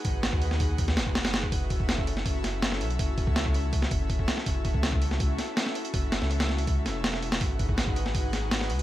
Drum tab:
HH |o-o-o-o-o-o-ooo-|o-o-o-o-o-o-o-ox|o-o-o-o-o-o-o-o-|o-o-o-o-o-o-o-ox|
SD |--o--o---oo-ooo-|----o--o--o-oo--|----o----o----oo|----o--o--o-oo--|
BD |o--o--o-o--o---o|o-oo-o--o-------|o-oo-o--o-o-oo--|o-oo-o--o-------|

HH |o-o-oo-oo-o-o-oo|o-o-o-o-o-o-o-ox|
SD |--oo-oo---o-oo-o|----o--o--o-oo--|
BD |o-------o-------|o-oo-o--o-------|